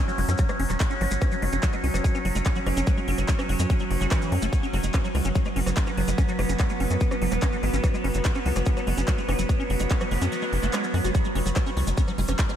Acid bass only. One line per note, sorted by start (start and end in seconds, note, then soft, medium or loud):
0.08 0.12 F#3 medium
0.18 0.20 G#3 medium
0.28 0.32 C#4 medium
0.39 0.43 F#3 medium
0.49 0.52 G#3 medium
0.59 0.63 C#4 medium
0.70 0.74 F#3 medium
0.80 0.83 G#3 medium
0.91 0.94 C#4 medium
1.01 1.05 F#3 medium
1.11 1.14 G#3 medium
1.22 1.26 C#4 medium
1.32 1.36 F#3 medium
1.42 1.45 G#3 medium
1.53 1.57 C#4 medium
1.63 1.67 F#3 medium
1.73 1.76 G#3 medium
1.84 1.88 C#4 medium
1.94 1.98 F#3 medium
2.04 2.07 G#3 medium
2.15 2.19 C#4 medium
2.25 2.29 F#3 medium
2.35 2.38 G#3 medium
2.46 2.50 C#4 medium
2.56 2.60 F#3 medium
2.66 2.69 G#3 medium
2.77 2.81 C#4 medium
2.87 2.91 F#3 medium
2.97 3.00 G#3 medium
3.08 3.12 C#4 medium
3.18 3.22 F#3 medium
3.29 3.31 G#3 medium
3.39 3.43 C#4 medium
3.49 3.53 F#3 medium
3.60 3.62 G#3 medium
3.70 3.74 C#4 medium
3.80 3.84 F#3 medium
4.01 4.07 F#3 medium
4.11 4.33 E3 medium
4.32 4.36 A3 medium
4.42 4.46 A3 loud
4.53 4.55 G#3 medium
4.63 4.67 C#4 medium
4.73 4.77 F#3 medium
4.84 4.86 G#3 medium
4.94 4.98 C#4 medium
5.04 5.08 F#3 medium
5.15 5.17 G#3 medium
5.25 5.29 C#4 medium
5.35 5.39 F#3 medium
5.46 5.48 G#3 medium
5.56 5.60 C#4 medium
5.66 5.70 F#3 medium
5.77 5.79 G#3 medium
5.87 5.91 C#4 medium
5.97 6.01 F#3 medium
6.08 6.10 G#3 medium
6.18 6.22 C#4 medium
6.29 6.32 F#3 medium
6.39 6.41 G#3 medium
6.49 6.53 C#4 medium
6.60 6.63 F#3 medium
6.70 6.72 G#3 medium
6.80 6.84 C#4 medium
6.91 6.94 F#3 medium
7.01 7.03 G#3 medium
7.11 7.15 C#4 medium
7.22 7.26 F#3 medium
7.32 7.34 G#3 medium
7.42 7.46 C#4 medium
7.53 7.57 F#3 medium
7.63 7.65 G#3 medium
7.73 7.77 C#4 medium
7.84 7.88 F#3 medium
7.94 7.96 G#3 medium
8.04 8.08 C#4 medium
8.15 8.19 F#3 medium
8.25 8.27 G#3 medium
8.35 8.39 C#4 medium
8.46 8.50 F#3 medium
8.56 8.58 G#3 medium
8.66 8.70 C#4 medium
8.77 8.81 F#3 medium
8.87 8.89 G#3 medium
8.97 9.01 C#4 medium
9.08 9.12 F#3 medium
9.18 9.20 G#3 medium
9.28 9.32 C#4 medium
9.39 9.43 F#3 medium
9.49 9.52 G#3 medium
9.60 9.63 C#4 medium
9.70 9.74 F#3 medium
9.80 9.83 G#3 medium
9.91 9.94 C#4 medium
10.01 10.05 F#3 medium
10.11 10.14 G#3 medium
10.22 10.26 C#4 medium
10.32 10.36 F#3 medium
10.42 10.45 G#3 medium
10.63 10.67 A3 medium
10.73 10.85 G#3 medium
10.84 10.86 F#3 medium
10.94 10.98 F#3 medium
11.04 11.10 F#4 medium
11.15 11.19 F#3 medium
11.25 11.27 G#3 medium
11.35 11.39 C#4 medium
11.46 11.50 F#3 medium
11.56 11.58 G#3 medium
11.66 11.70 C#4 medium
11.77 11.81 F#3 medium
11.87 11.89 G#3 medium
11.97 12.01 C#4 medium
12.08 12.12 F#3 medium
12.18 12.21 G#3 medium
12.29 12.32 C#4 medium
12.39 12.43 F#3 medium
12.49 12.52 G#3 medium